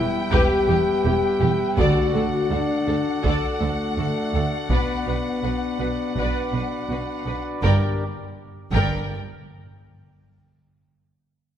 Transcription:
0.00 1.78 G3 medium
0.00 1.79 B3 medium
0.00 0.32 E4 medium
0.00 1.78 B4 medium
0.00 1.79 E5 medium
0.00 1.75 G5 medium
0.31 0.40 E1 medium
0.31 0.40 E2 medium
0.31 0.66 G4 medium
0.31 1.04 G4 medium
0.31 0.65 B4 medium
0.31 taiko medium
0.68 0.77 E1 medium
0.68 0.76 E2 medium
0.68 0.76 G4 medium
0.68 0.76 G4 soft
1.04 1.13 E1 soft
1.04 1.13 E2 medium
1.04 1.13 E4 medium
1.04 1.12 G4 medium
1.04 1.78 G4 medium
1.40 1.50 E1 medium
1.40 1.49 E2 medium
1.40 1.48 G4 medium
1.40 1.49 G4 medium
1.76 1.85 D2 medium
1.76 1.86 D2 medium
1.76 2.84 D3 medium
1.76 7.60 D4 medium
1.76 7.63 F#4 medium
1.76 2.51 F#4 medium
1.76 2.11 A4 medium
1.76 4.71 A4 medium
1.76 2.12 D5 medium
1.76 7.60 D5 medium
1.76 7.40 F#5 medium
1.76 taiko medium
2.14 2.22 D2 soft
2.14 2.23 D2 soft
2.14 2.22 A4 soft
2.50 2.59 D2 soft
2.50 3.22 D4 medium
2.50 2.60 F#4 soft
2.50 2.58 A4 soft
2.87 2.95 D2 soft
2.87 2.98 D2 soft
2.87 2.95 A4 soft
2.87 2.96 A4 soft
3.23 3.32 D2 medium
3.23 3.33 D2 medium
3.23 3.60 D4 medium
3.23 3.58 A4 medium
3.23 3.60 D5 medium
3.23 taiko medium
3.60 3.69 D2 soft
3.60 4.54 A3 medium
3.60 3.68 A4 soft
3.64 3.72 A4 soft
3.97 4.06 D2 soft
3.97 4.06 F#4 soft
3.97 4.05 A4 soft
4.33 4.41 D2 soft
4.33 4.43 D2 soft
4.33 4.42 A4 soft
4.70 4.78 B1 soft
4.70 4.78 B2 soft
4.70 7.23 B3 medium
4.70 5.05 B4 soft
4.70 7.63 B4 soft
4.70 5.04 D5 soft
4.70 taiko medium
5.07 5.16 B1 soft
5.07 5.15 B2 soft
5.07 5.15 B4 soft
5.07 5.18 B4 soft
5.43 5.52 B1 soft
5.43 5.51 B2 soft
5.43 5.54 F#4 soft
5.43 5.51 B4 soft
5.80 5.88 B1 soft
5.80 5.88 B2 soft
5.80 5.88 B4 soft
5.80 5.90 B4 soft
6.15 6.24 B1 soft
6.15 6.25 B2 soft
6.15 6.51 B4 soft
6.15 6.51 D5 soft
6.15 taiko medium
6.53 6.61 B1 soft
6.53 6.62 B2 soft
6.53 6.62 B4 soft
6.88 6.96 B1 soft
6.88 6.97 B2 soft
6.88 6.99 F#4 soft
6.88 7.00 B4 soft
7.26 7.34 B1 soft
7.26 7.34 B2 soft
7.26 7.35 B4 soft
7.26 7.36 B4 soft
7.62 7.83 G1 medium
7.62 7.83 G2 medium
7.62 7.84 G2 soft
7.62 7.96 G3 medium
7.62 8.03 D4 medium
7.62 8.04 G4 medium
7.62 8.04 A#4 medium
7.62 7.83 A#4 medium
7.62 8.03 D5 medium
7.62 7.84 D5 medium
7.62 7.84 G5 soft
7.62 taiko soft
8.72 9.13 G1 medium
8.72 9.14 G2 medium
8.72 9.07 G2 soft
8.72 9.14 A#4 medium
8.72 9.15 D5 medium
8.72 9.14 G5 medium
8.72 taiko soft

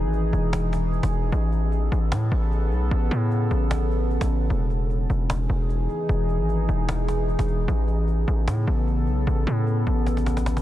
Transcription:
0.00 0.32 G#1 loud
0.00 1.29 E3 medium
0.00 1.29 D#4 medium
0.00 1.29 G#4 loud
0.13 cajon slap soft
0.33 1.00 E1 loud
0.33 cajon slap soft
0.53 cajon slap loud
0.73 cajon slap medium
0.93 cajon slap soft
1.03 1.31 E1 loud
1.03 cajon slap medium
1.12 cajon slap soft
1.32 1.90 A1 loud
1.32 4.47 C#3 medium
1.32 4.47 B3 medium
1.32 4.47 A4 loud
1.32 cajon slap soft
1.52 cajon slap soft
1.72 cajon slap soft
1.92 2.13 A1 loud
1.92 cajon slap soft
2.12 2.31 A2 loud
2.12 cajon slap loud
2.18 cajon slap soft
2.25 cajon slap soft
2.32 2.73 A1 loud
2.52 cajon slap soft
2.71 2.90 B1 loud
2.71 cajon slap soft
2.91 3.10 A1 loud
2.91 cajon slap soft
3.11 3.49 A2 loud
3.11 cajon slap soft
3.31 cajon slap soft
3.51 4.18 A1 loud
3.51 cajon slap soft
3.71 cajon slap loud
3.91 cajon slap soft
4.11 cajon slap soft
4.21 4.49 A1 loud
4.21 cajon slap medium
4.50 5.07 E1 loud
4.50 7.65 E3 medium
4.50 7.65 D#4 medium
4.50 7.65 G#4 loud
4.50 cajon slap soft
4.70 cajon slap soft
4.90 cajon slap soft
5.10 5.48 E1 loud
5.10 cajon slap soft
5.30 cajon slap loud
5.36 cajon slap soft
5.43 cajon slap soft
5.50 5.88 E1 loud
5.69 cajon slap soft
5.89 cajon slap soft
6.09 6.41 E1 loud
6.09 cajon slap soft
6.29 cajon slap soft
6.40 6.67 G#1 loud
6.49 cajon slap soft
6.69 7.36 E1 loud
6.69 cajon slap soft
6.89 cajon slap loud
7.08 cajon slap medium
7.28 cajon slap soft
7.39 7.67 E1 loud
7.39 cajon slap medium
7.48 cajon slap soft
7.68 8.25 A1 loud
7.68 10.62 C#3 medium
7.68 10.62 B3 medium
7.68 10.62 A4 loud
7.68 cajon slap soft
7.88 cajon slap soft
8.08 cajon slap soft
8.28 8.49 A1 loud
8.28 cajon slap soft
8.48 8.66 A2 loud
8.48 cajon slap loud
8.54 cajon slap soft
8.61 cajon slap soft
8.67 9.09 A1 loud
8.87 cajon slap soft
9.07 9.26 B1 loud
9.07 cajon slap soft
9.27 9.46 A1 loud
9.27 cajon slap soft
9.47 9.85 A2 loud
9.47 cajon slap soft
9.67 cajon slap soft
9.87 10.62 A1 loud
9.87 cajon slap soft
10.06 cajon slap medium
10.17 cajon slap medium
10.26 cajon slap medium
10.37 cajon slap medium
10.46 cajon slap loud
10.57 cajon slap medium

